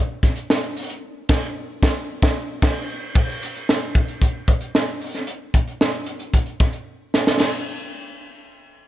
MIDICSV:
0, 0, Header, 1, 2, 480
1, 0, Start_track
1, 0, Tempo, 530973
1, 929, Time_signature, 4, 2, 24, 8
1, 8025, End_track
2, 0, Start_track
2, 0, Title_t, "Drums"
2, 208, Note_on_c, 9, 36, 92
2, 210, Note_on_c, 9, 42, 81
2, 211, Note_on_c, 9, 38, 37
2, 298, Note_off_c, 9, 36, 0
2, 300, Note_off_c, 9, 42, 0
2, 301, Note_off_c, 9, 38, 0
2, 322, Note_on_c, 9, 42, 61
2, 413, Note_off_c, 9, 42, 0
2, 453, Note_on_c, 9, 38, 127
2, 544, Note_off_c, 9, 38, 0
2, 560, Note_on_c, 9, 42, 37
2, 651, Note_off_c, 9, 42, 0
2, 692, Note_on_c, 9, 46, 81
2, 782, Note_off_c, 9, 46, 0
2, 809, Note_on_c, 9, 42, 58
2, 900, Note_off_c, 9, 42, 0
2, 1164, Note_on_c, 9, 49, 94
2, 1169, Note_on_c, 9, 36, 116
2, 1171, Note_on_c, 9, 38, 116
2, 1255, Note_off_c, 9, 49, 0
2, 1260, Note_off_c, 9, 36, 0
2, 1261, Note_off_c, 9, 38, 0
2, 1650, Note_on_c, 9, 36, 112
2, 1657, Note_on_c, 9, 38, 112
2, 1740, Note_off_c, 9, 36, 0
2, 1747, Note_off_c, 9, 38, 0
2, 2011, Note_on_c, 9, 36, 119
2, 2019, Note_on_c, 9, 38, 117
2, 2101, Note_off_c, 9, 36, 0
2, 2109, Note_off_c, 9, 38, 0
2, 2372, Note_on_c, 9, 36, 116
2, 2373, Note_on_c, 9, 49, 83
2, 2380, Note_on_c, 9, 38, 109
2, 2462, Note_off_c, 9, 36, 0
2, 2464, Note_off_c, 9, 49, 0
2, 2470, Note_off_c, 9, 38, 0
2, 2852, Note_on_c, 9, 36, 116
2, 2852, Note_on_c, 9, 49, 93
2, 2942, Note_off_c, 9, 36, 0
2, 2942, Note_off_c, 9, 49, 0
2, 2976, Note_on_c, 9, 42, 38
2, 3066, Note_off_c, 9, 42, 0
2, 3096, Note_on_c, 9, 42, 86
2, 3187, Note_off_c, 9, 42, 0
2, 3210, Note_on_c, 9, 42, 47
2, 3301, Note_off_c, 9, 42, 0
2, 3337, Note_on_c, 9, 38, 109
2, 3427, Note_off_c, 9, 38, 0
2, 3459, Note_on_c, 9, 42, 33
2, 3549, Note_off_c, 9, 42, 0
2, 3569, Note_on_c, 9, 42, 77
2, 3572, Note_on_c, 9, 36, 99
2, 3660, Note_off_c, 9, 42, 0
2, 3662, Note_off_c, 9, 36, 0
2, 3691, Note_on_c, 9, 42, 53
2, 3781, Note_off_c, 9, 42, 0
2, 3811, Note_on_c, 9, 36, 81
2, 3817, Note_on_c, 9, 42, 89
2, 3901, Note_off_c, 9, 36, 0
2, 3908, Note_off_c, 9, 42, 0
2, 4049, Note_on_c, 9, 36, 92
2, 4055, Note_on_c, 9, 42, 81
2, 4140, Note_off_c, 9, 36, 0
2, 4145, Note_off_c, 9, 42, 0
2, 4165, Note_on_c, 9, 42, 52
2, 4255, Note_off_c, 9, 42, 0
2, 4293, Note_on_c, 9, 38, 127
2, 4383, Note_off_c, 9, 38, 0
2, 4405, Note_on_c, 9, 42, 37
2, 4495, Note_off_c, 9, 42, 0
2, 4529, Note_on_c, 9, 46, 73
2, 4619, Note_off_c, 9, 46, 0
2, 4647, Note_on_c, 9, 42, 54
2, 4652, Note_on_c, 9, 38, 38
2, 4738, Note_off_c, 9, 42, 0
2, 4742, Note_off_c, 9, 38, 0
2, 4764, Note_on_c, 9, 42, 75
2, 4855, Note_off_c, 9, 42, 0
2, 5008, Note_on_c, 9, 36, 87
2, 5008, Note_on_c, 9, 42, 85
2, 5098, Note_off_c, 9, 42, 0
2, 5099, Note_off_c, 9, 36, 0
2, 5130, Note_on_c, 9, 42, 47
2, 5220, Note_off_c, 9, 42, 0
2, 5252, Note_on_c, 9, 38, 113
2, 5343, Note_off_c, 9, 38, 0
2, 5372, Note_on_c, 9, 42, 32
2, 5463, Note_off_c, 9, 42, 0
2, 5480, Note_on_c, 9, 42, 77
2, 5571, Note_off_c, 9, 42, 0
2, 5598, Note_on_c, 9, 42, 52
2, 5689, Note_off_c, 9, 42, 0
2, 5727, Note_on_c, 9, 36, 82
2, 5730, Note_on_c, 9, 42, 92
2, 5818, Note_off_c, 9, 36, 0
2, 5821, Note_off_c, 9, 42, 0
2, 5838, Note_on_c, 9, 42, 38
2, 5929, Note_off_c, 9, 42, 0
2, 5966, Note_on_c, 9, 42, 79
2, 5967, Note_on_c, 9, 38, 38
2, 5968, Note_on_c, 9, 36, 95
2, 6056, Note_off_c, 9, 42, 0
2, 6057, Note_off_c, 9, 38, 0
2, 6058, Note_off_c, 9, 36, 0
2, 6080, Note_on_c, 9, 42, 55
2, 6171, Note_off_c, 9, 42, 0
2, 6454, Note_on_c, 9, 38, 90
2, 6544, Note_off_c, 9, 38, 0
2, 6573, Note_on_c, 9, 38, 102
2, 6664, Note_off_c, 9, 38, 0
2, 6685, Note_on_c, 9, 57, 81
2, 6692, Note_on_c, 9, 38, 99
2, 6776, Note_off_c, 9, 57, 0
2, 6782, Note_off_c, 9, 38, 0
2, 8025, End_track
0, 0, End_of_file